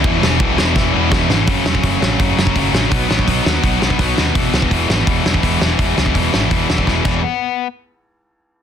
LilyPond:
<<
  \new Staff \with { instrumentName = "Distorted electric guitar" } { \clef bass \time 4/4 \key e \major \tempo 4 = 167 <e gis b e'>8 <e gis b e'>8 <e gis b e'>8 <e gis b e'>8 <e gis b e'>8 <e gis b e'>8 <e gis b e'>8 <e gis b e'>8 | <fis, cis fis a cis'>8 <fis, cis fis a cis'>8 <fis, cis fis a cis'>8 <fis, cis fis a cis'>8 <fis, cis fis a cis'>8 <fis, cis fis a cis'>8 <fis, cis fis a cis'>8 <fis, cis fis a cis'>8 | <b, fis b dis'>8 <b, fis b dis'>8 <b, fis b dis'>8 <b, fis b dis'>8 <b, fis b dis'>8 <b, fis b dis'>8 <b, fis b dis'>8 <b, fis b dis'>8 | <e gis b e'>8 <e gis b e'>8 <e gis b e'>8 <e gis b e'>8 <e gis b e'>8 <e gis b e'>8 <e gis b e'>8 <e gis b e'>8 |
<e gis b e'>8 <e gis b e'>8 <e gis b e'>8 <e gis b e'>8 <e gis b e'>8 <e gis b e'>8 <e gis b e'>8 <e gis b e' gis'>8 | r1 | }
  \new Staff \with { instrumentName = "Distorted electric guitar" } { \clef bass \time 4/4 \key e \major <e, b, e>8 <e, b, e>8 <e, b, e>8 <e, b, e>8 <e, b, e>8 <e, b, e>8 <e, b, e>8 <e, b, e>8 | <fis, cis fis>8 <fis, cis fis>8 <fis, cis fis>8 <fis, cis fis>8 <fis, cis fis>8 <fis, cis fis>8 <fis, cis fis>8 <fis, cis fis>8 | <b, fis b>8 <b, fis b>8 <b, fis b>8 <b, fis b>8 <b, fis b>8 <b, fis b>8 <b, fis b>8 <b, fis b>8 | <e, b, e>8 <e, b, e>8 <e, b, e>8 <e, b, e>8 <e, b, e>8 <e, b, e>8 <e, b, e>8 <e, b, e>8 |
<e, b, e>8 <e, b, e>8 <e, b, e>8 <e, b, e>8 <e, b, e>8 <e, b, e>8 <e, b, e>8 <e, b, e>8 | r1 | }
  \new Staff \with { instrumentName = "Picked electric bass" } { \clef bass \time 4/4 \key e \major e,,8 e,,8 b,,8 e,,8 e,,8 e,8 e,,8 gis,,8 | fis,,8 e,,8 fis,,8 a,,8 fis,,8 fis,,8 fis,,8 a,,8 | b,,8 a,,8 b,,8 dis,8 b,,8 b,,8 b,,8 dis,8 | e,,8 cis,8 e,,8 gis,,8 e,,8 e,,8 e,,8 e,,8 |
e,,8 cis,8 e,,8 gis,,8 e,,8 e,,8 e,,8 e,,8 | r1 | }
  \new DrumStaff \with { instrumentName = "Drums" } \drummode { \time 4/4 <bd cymr>8 sn8 <bd cymr>8 sn8 <bd sn>4 <bd sn>8 sn8 | <hho bd>8 sn16 bd16 <hho bd>8 sn8 <hho bd>8 sn16 bd16 <hho bd>8 sn8 | <hho bd>8 sn16 bd16 <hho bd>8 sn8 <hho bd>8 sn16 bd16 <hho bd>8 sn8 | <hho bd>8 sn16 bd16 <hho bd>8 sn8 <hho bd>8 sn16 bd16 <hho bd>8 sn8 |
<hho bd>8 sn16 bd16 <hho bd>8 sn8 <hho bd>8 sn16 bd16 <bd sn>8 <cymc bd>8 | r4 r4 r4 r4 | }
>>